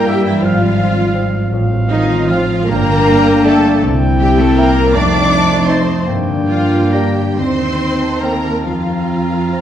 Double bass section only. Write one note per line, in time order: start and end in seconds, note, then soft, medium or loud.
0.00 0.42 G2 medium
0.45 1.52 G#1 loud
1.52 2.57 A1 loud
2.70 3.69 G1 loud
3.82 4.81 C2 loud
4.95 5.93 F2 loud
6.06 7.23 G2 loud
7.39 8.51 D#2 medium
8.66 9.61 F2 medium